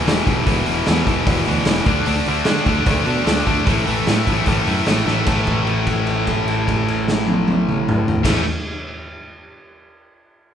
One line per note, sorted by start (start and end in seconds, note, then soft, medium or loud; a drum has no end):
0.05 0.20 E1 medium
0.05 0.25 E2 medium
0.05 0.26 B2 loud
0.05 0.26 E3 loud
0.05 snare loud
0.05 open hi-hat medium
0.27 0.41 E1 medium
0.27 0.44 E2 medium
0.27 0.45 B2 medium
0.27 0.45 E3 medium
0.27 kick medium
0.27 open hi-hat medium
0.45 0.61 E1 medium
0.45 0.65 E2 medium
0.45 0.65 B2 loud
0.45 0.66 E3 loud
0.45 kick loud
0.45 open hi-hat medium
0.66 0.81 E1 medium
0.66 0.84 E2 medium
0.66 0.86 B2 medium
0.66 0.86 E3 medium
0.66 open hi-hat medium
0.86 1.05 E2 medium
0.86 1.01 E2 medium
0.86 1.05 B2 medium
0.86 1.05 E3 medium
0.86 snare loud
0.86 open hi-hat medium
1.06 1.21 E1 medium
1.06 1.25 E2 medium
1.06 1.26 B2 medium
1.06 1.26 E3 loud
1.06 kick medium
1.06 open hi-hat medium
1.26 1.41 E1 medium
1.26 1.45 E2 loud
1.26 1.46 B2 loud
1.26 1.47 E3 loud
1.26 kick loud
1.26 open hi-hat medium
1.46 1.61 D2 loud
1.46 1.66 E2 medium
1.46 1.66 B2 medium
1.46 1.67 E3 medium
1.46 open hi-hat medium
1.65 1.80 E1 medium
1.65 1.86 E2 medium
1.65 1.85 B2 medium
1.65 1.86 E3 loud
1.65 snare loud
1.65 open hi-hat medium
1.86 2.00 D2 medium
1.86 2.05 D3 medium
1.86 2.06 A3 medium
1.86 2.06 D4 loud
1.86 kick loud
1.86 open hi-hat medium
2.06 2.21 D2 medium
2.06 2.27 D3 medium
2.06 2.28 A3 medium
2.06 2.27 D4 loud
2.06 open hi-hat medium
2.26 2.40 D2 medium
2.26 2.44 D3 medium
2.26 2.46 A3 medium
2.26 2.45 D4 medium
2.26 open hi-hat medium
2.45 2.65 D3 medium
2.45 2.60 D3 medium
2.45 2.66 A3 medium
2.45 2.66 D4 medium
2.45 snare loud
2.45 open hi-hat medium
2.66 2.80 D2 medium
2.66 2.85 D3 medium
2.66 2.86 A3 medium
2.66 2.86 D4 medium
2.66 kick medium
2.66 open hi-hat soft
2.86 3.01 D2 medium
2.86 3.04 D3 medium
2.86 3.05 A3 loud
2.86 3.05 D4 loud
2.86 kick loud
2.86 open hi-hat medium
3.05 3.20 B2 medium
3.05 3.23 D3 medium
3.05 3.25 A3 medium
3.05 3.25 D4 medium
3.05 open hi-hat medium
3.25 3.41 D2 loud
3.25 3.46 D3 medium
3.25 3.47 A3 medium
3.25 3.46 D4 medium
3.25 snare loud
3.25 open hi-hat medium
3.47 3.61 D2 medium
3.47 3.65 D3 medium
3.47 3.68 A3 medium
3.47 3.66 D4 loud
3.47 kick medium
3.47 open hi-hat medium
3.66 3.81 A1 medium
3.66 3.85 A2 medium
3.66 3.86 E3 loud
3.66 3.86 A3 medium
3.66 kick loud
3.66 open hi-hat medium
3.86 4.01 A1 medium
3.86 4.08 A2 medium
3.86 4.08 E3 medium
3.86 4.08 A3 medium
3.86 open hi-hat medium
4.07 4.21 A2 medium
4.07 4.28 A2 medium
4.07 4.28 E3 medium
4.07 4.29 A3 medium
4.07 snare loud
4.07 open hi-hat medium
4.27 4.41 A1 medium
4.27 4.46 A2 medium
4.27 4.47 E3 medium
4.27 4.48 A3 medium
4.27 kick medium
4.27 open hi-hat medium
4.46 4.61 A1 medium
4.46 4.66 A2 medium
4.46 4.67 E3 medium
4.46 4.67 A3 loud
4.46 kick loud
4.46 open hi-hat medium
4.67 4.81 F#2 medium
4.67 4.87 A2 medium
4.67 4.88 E3 medium
4.67 4.88 A3 medium
4.67 open hi-hat medium
4.86 5.01 A1 medium
4.86 5.06 A2 medium
4.86 5.06 E3 medium
4.86 5.07 A3 medium
4.86 snare loud
4.86 open hi-hat medium
5.06 5.20 A1 medium
5.06 5.24 A2 medium
5.06 5.26 E3 medium
5.06 5.26 A3 medium
5.06 snare medium
5.25 8.15 A1 medium
5.25 8.23 A2 medium
5.25 8.25 E3 medium
5.25 8.28 A3 medium
5.25 kick loud
5.25 crash medium
5.47 kick medium
5.47 crash soft
5.67 crash soft
5.87 kick medium
5.87 crash soft
6.07 crash soft
6.27 kick medium
6.27 crash soft
6.48 crash soft
6.68 kick medium
6.68 crash soft
6.88 crash soft
7.08 snare medium
7.27 high tom medium
7.48 high tom medium
7.68 mid tom medium
7.89 mid tom loud
8.08 floor tom loud
8.23 8.41 A1 medium
8.23 8.42 A2 medium
8.23 8.43 E3 medium
8.23 kick loud
8.23 snare loud
8.23 crash loud
8.28 8.44 A3 loud